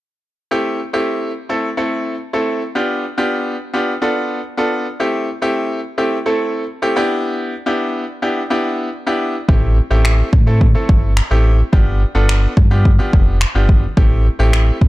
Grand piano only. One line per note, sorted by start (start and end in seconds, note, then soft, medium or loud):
0.51 0.79 A3 medium
0.51 0.79 C4 medium
0.51 0.79 E4 medium
0.51 0.79 G4 medium
0.93 1.30 A3 medium
0.93 1.30 C4 medium
0.93 1.30 E4 medium
0.93 1.30 G4 medium
1.49 1.68 A3 medium
1.49 1.68 C4 medium
1.49 1.68 E4 medium
1.49 1.68 A4 medium
1.77 2.14 A3 medium
1.77 2.14 C4 medium
1.77 2.14 E4 medium
1.77 2.14 A4 medium
2.33 2.61 A3 medium
2.33 2.61 C4 medium
2.33 2.61 E4 medium
2.33 2.61 A4 medium
2.75 3.03 B3 medium
2.75 3.03 D4 medium
2.75 3.03 F4 medium
2.75 3.03 G4 medium
3.18 3.54 B3 medium
3.18 3.55 D4 medium
3.18 3.55 F4 medium
3.18 3.55 G4 medium
3.74 3.92 B3 medium
3.74 3.92 D4 medium
3.74 3.92 F4 medium
3.74 3.92 G4 medium
4.02 4.39 B3 medium
4.02 4.39 D4 medium
4.02 4.39 F4 medium
4.02 4.39 A4 medium
4.57 4.85 B3 medium
4.57 4.85 D4 medium
4.57 4.85 F4 medium
4.57 4.86 A4 medium
5.00 5.27 A3 medium
5.00 5.28 C4 medium
5.00 5.28 E4 medium
5.00 5.28 G4 medium
5.42 5.79 A3 medium
5.42 5.79 C4 medium
5.42 5.79 E4 medium
5.42 5.79 G4 loud
5.98 6.16 A3 medium
5.98 6.16 C4 medium
5.98 6.16 E4 medium
5.98 6.16 G4 medium
6.26 6.63 A3 medium
6.26 6.63 C4 medium
6.26 6.63 E4 medium
6.26 6.63 A4 medium
6.82 6.96 A3 medium
6.82 6.96 C4 medium
6.82 6.95 E4 medium
6.82 6.95 G4 medium
6.96 7.52 B3 medium
6.96 7.52 D4 medium
6.96 7.52 E4 medium
6.96 7.53 G4 loud
7.66 8.03 B3 medium
7.66 8.03 D4 medium
7.66 8.03 E4 medium
7.66 8.03 G4 medium
8.22 8.41 B3 medium
8.22 8.41 D4 medium
8.22 8.41 E4 medium
8.22 8.41 G4 medium
8.50 8.87 B3 medium
8.50 8.87 D4 medium
8.50 8.87 E4 medium
8.50 8.87 G4 medium
9.07 9.34 B3 medium
9.07 9.34 D4 medium
9.07 9.34 E4 medium
9.07 9.34 G4 medium
9.48 9.76 A3 medium
9.48 9.76 C4 medium
9.48 9.76 E4 medium
9.48 9.76 G4 medium
9.90 10.27 A3 medium
9.90 10.27 C4 medium
9.90 10.28 E4 medium
9.90 10.27 G4 medium
10.47 10.65 A3 medium
10.47 10.65 C4 medium
10.47 10.65 E4 medium
10.47 10.65 A4 medium
10.75 11.11 A3 medium
10.75 11.12 C4 medium
10.75 11.12 E4 medium
10.75 11.12 A4 medium
11.31 11.58 A3 medium
11.31 11.58 C4 medium
11.31 11.58 E4 medium
11.31 11.59 G4 medium
11.73 12.00 B3 medium
11.73 12.00 D4 medium
11.73 12.00 F4 medium
11.73 12.01 G4 medium
12.15 12.52 B3 medium
12.15 12.52 D4 medium
12.15 12.52 F4 medium
12.15 12.52 A4 medium
12.71 12.89 B3 medium
12.71 12.89 D4 medium
12.71 12.89 F4 medium
12.71 12.89 G4 medium
12.99 13.36 B3 medium
12.99 13.36 D4 medium
12.99 13.36 F4 medium
12.99 13.36 G4 medium
13.55 13.83 B3 medium
13.55 13.83 D4 medium
13.55 13.83 F4 medium
13.55 13.83 G4 medium
13.97 14.25 A3 medium
13.97 14.25 C4 medium
13.97 14.25 E4 medium
13.97 14.25 G4 medium
14.39 14.76 A3 medium
14.39 14.76 C4 medium
14.39 14.76 E4 medium
14.39 14.76 G4 loud